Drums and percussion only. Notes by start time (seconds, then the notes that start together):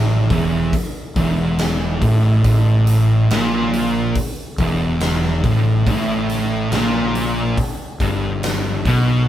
0.30 kick, open hi-hat
0.73 kick, open hi-hat
1.16 kick, open hi-hat
1.59 snare, open hi-hat
2.02 kick, open hi-hat
2.44 kick, open hi-hat
2.87 open hi-hat
3.31 snare, open hi-hat
3.73 open hi-hat
4.15 kick, open hi-hat
4.58 kick, open hi-hat
5.00 snare, open hi-hat
5.24 snare
5.44 kick, open hi-hat
5.87 kick, open hi-hat
6.30 snare, open hi-hat
6.72 snare, open hi-hat
7.15 open hi-hat
7.58 kick, open hi-hat
8.00 kick, open hi-hat
8.43 snare, open hi-hat
8.85 kick, open hi-hat